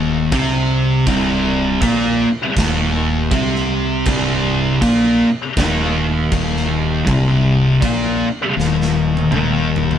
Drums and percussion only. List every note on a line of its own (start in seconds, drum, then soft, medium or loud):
0.32 kick loud
0.32 crash medium
1.06 kick loud
1.06 crash medium
1.82 kick loud
1.82 crash medium
2.57 kick loud
2.57 snare loud
2.57 crash medium
3.31 kick loud
3.31 crash medium
3.56 snare soft
4.05 kick loud
4.05 crash medium
4.82 kick loud
4.82 crash medium
5.57 kick loud
5.57 snare loud
5.57 crash medium
6.32 kick loud
6.32 crash medium
6.57 snare soft
7.07 kick loud
7.07 crash medium
7.82 kick loud
7.82 crash medium
8.60 snare medium
8.82 snare medium
9.17 high tom medium
9.32 mid tom loud
9.76 floor tom loud
9.91 floor tom loud